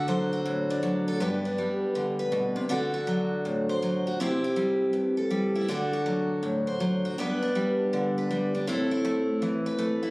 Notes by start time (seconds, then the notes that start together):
Already playing: D3 D4 F#4
0.08 F#3 C5
0.33 F#4
0.46 A2
0.70 D4
0.83 F#3
1.08 A4
1.20 G2 B3 D4 B4
1.45 D4
1.58 G3
1.95 D3
2.19 B4
2.32 B2
2.56 C3
2.69 D3 D4 F#4 A4
2.94 F#4
3.07 F#3
3.45 A2
3.69 C5
3.82 F#3
4.07 F#4
4.20 C3 C4 E4 G4
4.44 E4
4.56 G3
4.93 G2
5.17 A4
5.31 G3
5.55 E4
5.68 D3 D4 F#4 A4
5.93 F#4
6.06 F#3
6.43 A2
6.67 C5
6.80 F#3
7.05 F#4
7.18 G2 B3 D4 B4
7.42 D4
7.55 G3
7.93 D3
8.18 B4
8.31 G3
8.55 D4
8.67 A2 C4 E4 A4
8.91 E4
9.05 A3
9.42 E3
9.66 B4
9.79 A3
10.03 E4